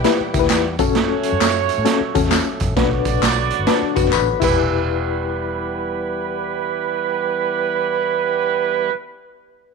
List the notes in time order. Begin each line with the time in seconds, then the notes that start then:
Already playing: E3 G3 B3 E4 G4 B4 G5
0.04 E4 G4 B4, snare, closed hi-hat, tambourine
0.20 muted fingered electric bass stroke
0.34 D2 E4 G4 A#4, kick, closed hi-hat, tambourine
0.39 B4, snare
0.50 E2, snare, clap, closed hi-hat, tambourine
0.79 F#2 F#3 A3 C#4 F#4 A4 C#5, kick, closed hi-hat, tambourine
0.95 snare, closed hi-hat
1.23 closed hi-hat, tambourine
1.32 F#2
1.41 F#2, snare, clap, closed hi-hat, tambourine
1.69 closed hi-hat, tambourine
1.78 A2
1.85 C#4 F#4 A4, snare, closed hi-hat, tambourine
2.01 muted fingered electric bass stroke
2.15 E2 C#4 F#4 A4, kick, closed hi-hat, tambourine
2.24 snare
2.31 snare, clap, closed hi-hat, tambourine
2.60 F#2, kick, closed hi-hat, tambourine
2.68 A1
2.76 B1 D3 B3 D4 F#4 B4 D5, kick, snare, closed hi-hat
3.05 kick, closed hi-hat, tambourine
3.14 B1
3.22 B1, snare, clap, closed hi-hat, tambourine
3.50 closed hi-hat
3.59 G1
3.67 D4 F#4 B4, snare, closed hi-hat, tambourine
3.82 muted fingered electric bass stroke
3.96 F#1 D4 F#4 B4, kick, closed hi-hat, tambourine
4.05 snare
4.13 A1 B4, clap, tambourine
4.40 E1 E3 G3 B3 E4 G4 B4, kick, crash, tambourine